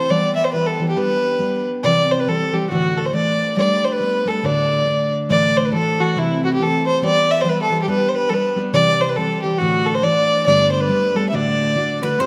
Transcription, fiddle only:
0.00 0.12 C5 medium
0.10 0.35 D5 medium
0.36 0.46 E5 medium
0.44 0.53 C5 medium
0.53 0.68 B4 medium
0.66 0.89 A4 medium
0.89 0.99 G4 medium
0.97 1.67 B4 medium
1.83 2.13 D5 loud
2.11 2.21 C5 medium
2.19 2.30 B4 medium
2.28 2.55 A4 medium
2.54 2.70 G4 medium
2.70 2.99 F#4 medium
2.98 3.07 A4 medium
3.06 3.14 C5 medium
3.15 3.55 D5 medium
3.58 3.86 D5 loud
3.85 3.94 C5 medium
3.92 4.29 B4 medium
4.28 4.47 A4 medium
4.45 5.14 D5 medium
5.31 5.58 D5 loud
5.57 5.66 C5 medium
5.65 5.73 B4 medium
5.74 6.01 A4 medium
6.00 6.20 F#4 medium
6.19 6.43 E4 medium
6.45 6.52 F#4 medium
6.54 6.64 G4 medium
6.62 6.86 A4 medium
6.87 7.02 C5 medium
7.05 7.32 D5 loud
7.31 7.42 E5 medium
7.41 7.51 C5 medium
7.49 7.60 B4 medium
7.62 7.81 A4 medium
7.82 7.89 G4 medium
7.90 8.10 B4 medium
8.09 8.16 C5 medium
8.15 8.31 B4 medium
8.29 8.35 A4 medium
8.34 8.59 B4 medium
8.74 9.02 D5 loud
9.01 9.11 C5 medium
9.09 9.18 B4 medium
9.16 9.42 A4 loud
9.42 9.60 G4 medium
9.58 9.87 F#4 loud
9.86 9.96 A4 medium
9.95 10.05 C5 medium
10.03 10.45 D5 loud
10.46 10.71 D5 loud
10.72 10.82 C5 medium
10.80 11.17 B4 medium
11.16 11.28 A4 medium
11.29 11.36 E5 medium
11.35 12.03 D5 medium
12.04 12.21 B4 medium
12.20 12.26 C5 medium

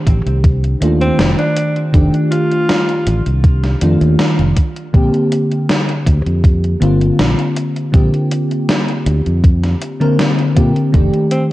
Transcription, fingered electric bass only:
0.07 0.21 A1 loud
0.26 0.74 C2 medium
0.82 1.10 D#2 medium
1.19 1.33 F1 medium
1.94 2.08 F1 loud
3.07 3.21 A1 loud
3.26 3.74 C2 medium
3.82 3.96 F2 medium
4.01 4.14 D#2 loud
4.39 4.52 F1 loud
4.94 5.08 A#1 loud
6.06 6.21 D2 loud
6.26 6.74 F2 medium
6.82 7.10 G1 loud
7.19 7.33 A#1 loud
7.94 8.08 A#1 loud
9.06 9.21 D2 loud
9.26 9.74 F2 medium
10.56 10.71 A#2 loud
10.94 11.08 F1 loud

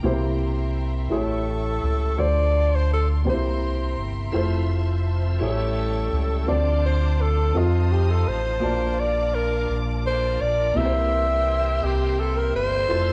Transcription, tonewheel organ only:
4.32 5.39 F3 soft
4.32 5.39 C4 soft
4.32 6.45 E5 soft
5.39 6.46 G3 medium
5.39 6.46 C#4 soft
6.47 8.60 F3 soft
6.47 8.60 C4 soft
6.47 7.54 D4 soft
7.54 8.61 D#4 soft
8.61 10.74 F3 soft
8.61 12.86 A#3 soft
8.61 10.74 D4 soft
10.77 12.89 E3 soft
10.77 13.13 C4 soft
10.77 12.89 G4 medium
12.90 13.13 F3 soft
12.90 13.13 A4 medium
12.90 13.13 E5 soft

